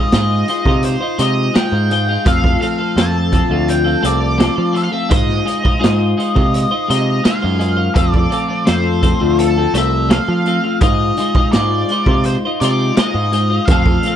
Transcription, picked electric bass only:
0.13 G#2
0.66 C3
1.19 C3
1.72 G#2
2.26 F2
2.96 F2
3.50 D2
4.04 C2
4.58 F3
5.10 G#2
5.84 G#2
6.35 C3
6.90 C3
7.44 F#2
7.96 F2
8.68 F2
9.21 D2
9.74 C2
10.28 F3
10.81 G#2
11.54 G#2
12.06 C3
12.61 C3
13.15 G#2
13.68 F2

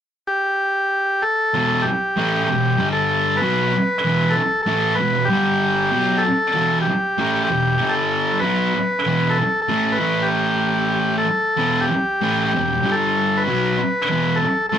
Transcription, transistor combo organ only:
0.27 G4
1.22 A4
1.82 G4
2.44 G4
2.93 A4
3.37 B4
4.30 A4
4.63 A4
4.95 B4
5.25 G4
6.18 A4
6.81 G4
7.44 G4
7.89 A4
8.40 B4
9.30 A4
9.62 A4
9.92 B4
10.22 G4
11.18 A4
11.81 G4
12.44 G4
12.91 A4
13.37 B4
14.36 A4
14.69 A4

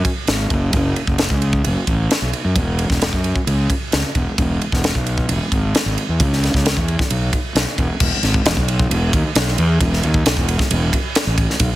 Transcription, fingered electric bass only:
0.27 G#1
0.50 F#1
0.73 F#1
1.08 F#1
1.30 C#2
1.65 F#1
1.88 A1
2.22 B1
2.45 F#2
2.56 E1
2.90 E1
3.13 F#2
3.47 C#2
3.93 C#2
4.15 E1
4.38 E1
4.72 E1
4.95 B1
5.29 E1
5.52 G#1
5.86 G#1
6.09 E2
6.20 C#2
6.54 C#2
6.77 E2
7.11 B1
7.55 B1
7.78 E1
8.00 E1
8.23 G#1
8.45 E1
8.57 B1
8.90 E1
9.13 D#2
9.35 B1
9.58 E2
9.81 E1
10.04 D#2
10.26 B1
10.37 E1
10.71 E1
11.27 A1
11.60 B1

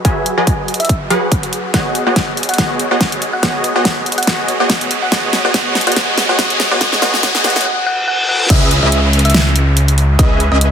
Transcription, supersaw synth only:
0.05 F#3 F#4 G#4 B4 E5
0.38 F#3 F#4 G#4 B4 D#5
1.10 F#3 F#4 G#4 B4 F#5
1.74 B3 F#4 G#4 C#5 D#5
2.07 B3 F#4 G#4 C#5 D#5
2.58 B3 F#4 G#4 C#5 D#5
2.91 B3 F#4 G#4 C#5 D#5
3.43 B3 F#4 G#4 C#5 D#5
3.76 B3 F#4 G#4 C#5 D#5
4.27 B3 F#4 G#4 C#5 D#5
4.60 B3 F#4 G#4 C#5 D#5
5.12 B3 F#4 G#4 C#5 D#5
5.45 B3 F#4 G#4 C#5 D#5
5.54 B3 G#4 C#5 D#5
5.87 B3 F#4 G#4 C#5 D#5
5.96 B3 F#4 G#4 C#5 D#5
6.29 B3 F#4 G#4 C#5 D#5
6.39 B3 F#4 G#4 C#5 D#5
6.71 B3 F#4 G#4 C#5 D#5
6.81 B3 F#4 G#4 C#5 D#5
7.02 B3 F#4 G#4 C#5 D#5
7.23 B3 F#4 G#4 C#5 D#5
7.44 B3 F#4 G#4 C#5 D#5
8.50 C#4 G#4 B4 D#5 E5
8.83 C#4 G#4 B4 D#5 E5
10.19 C#4 G#4 B4 D#5 E5
10.52 C#4 G#4 B4 D#5 E5

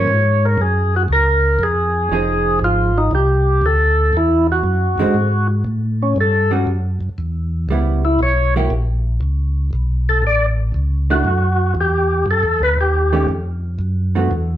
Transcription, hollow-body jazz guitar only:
2.12 F3 C4 D#4 G#4
4.99 D3 G#3 C4 F#4
6.51 G3 C#4 F#4
7.70 G3 B3 E4
8.56 F#3 A#3 E4 G4
11.10 A3 D4 E4
13.12 D#3 A3 C#4 G4
14.15 D3 A3 B3 F#4

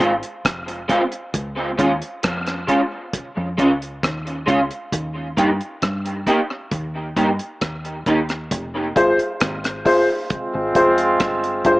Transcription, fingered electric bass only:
0.00 G#1
0.45 F1
1.34 C#2
1.79 D#2
2.25 F2
3.37 F2
3.59 C#2
4.04 D#2
4.48 C#2
4.93 D#2
5.38 G2
5.83 G2
6.72 D#2
7.17 G2
7.62 D#2
8.07 D#2
8.52 F1
8.96 G1
9.42 G#1
10.55 G#1
10.76 F1
11.21 G1
11.65 G1

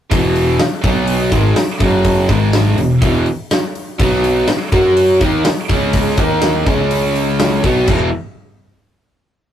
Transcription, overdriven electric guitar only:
0.11 E2 B2 E3
0.60 muted overdriven electric guitar stroke
0.84 B2 F#3 B3
1.32 G#2 D#3 G#3
1.56 muted overdriven electric guitar stroke
1.79 F#2 C#3 F#3
2.29 G#2 D#3 G#3
2.79 E2 B2
3.02 E2 B2 E3
3.99 B2 F#3 B3
4.48 muted overdriven electric guitar stroke
4.72 F#3 C#4 F#4
5.20 D#3 A#3 D#4
5.45 muted overdriven electric guitar stroke
5.69 C#3 G#3 C#4
6.18 D#3 A#3 D#4
6.66 C#3 G#3 C#4
7.63 B2 F#3 B3
7.88 E2 B2 E3 G#3 B3 E4

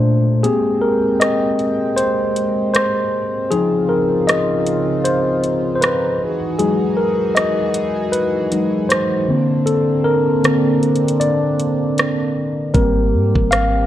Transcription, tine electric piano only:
Already playing: A#2 A3 D4 C5
0.43 A#3 C4 G4 G#4
0.82 A#4
1.20 D#5
1.97 C5
2.74 C5
3.51 F3 C4 D#4 G#4
3.89 A#4
4.27 D#5
5.05 C5
5.75 C5
5.81 B4
6.59 F#3 G#3 D#4 G#4
6.97 A#4
7.35 D#5
8.12 B4
8.52 F#3 G#3 D#4
8.89 C5
9.28 D3 A#3 C4
9.66 A4
10.04 A#4
10.44 D3 C4 A4
11.20 D5
12.74 G3 A#3 C4 A#4
13.51 F5

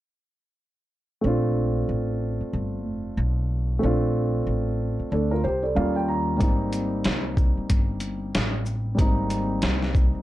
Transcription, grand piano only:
1.21 A3 C4 D4
1.27 F4
3.79 A3 C4
3.84 D4 F4
5.12 D4 A4
5.31 F4 A#4
5.44 G4 C5
5.63 A4 D5
5.75 G3 A#3 C#4 F4 F5
5.96 G5
6.08 A#5
6.37 G3 A#3
6.41 C4 D#4
8.95 G3 A#3
8.99 C4 D#4

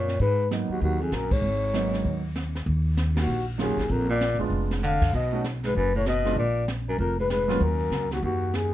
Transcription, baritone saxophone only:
Already playing: A#2
0.20 G#2
0.70 D#2
0.82 D#2
1.01 F2
1.14 F#2
1.32 G#2
3.16 D#2
3.60 D#2
3.89 F2
4.09 A#2
4.82 D3
5.14 B2
5.65 G#2
5.75 F#2
5.95 A2
6.07 B2
6.38 A#2
6.88 F#2
6.99 F2
7.19 G#2
7.31 G#2
7.62 F#2
8.11 D#2
8.22 D#2
8.54 D#2

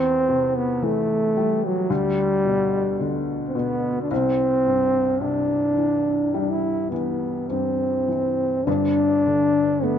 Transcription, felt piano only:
Already playing: E2
0.29 C3
0.82 E3
1.37 G3
1.90 D2
2.45 B2
3.00 D3
3.55 B2
4.11 C2
4.67 G2
5.21 C3
5.77 E3
6.34 G3
6.92 E3
7.50 G2
8.08 E3
8.67 G1 G2
9.26 D3
9.83 A3

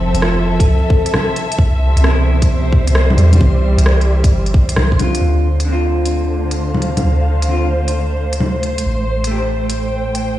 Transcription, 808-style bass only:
Already playing: F1
0.14 F1
0.67 C2
1.58 C2
1.96 C2
2.87 C2
3.17 E2
3.41 C2
3.78 C2
4.31 G1
4.54 C2
5.21 D2
7.04 D2
8.86 A1

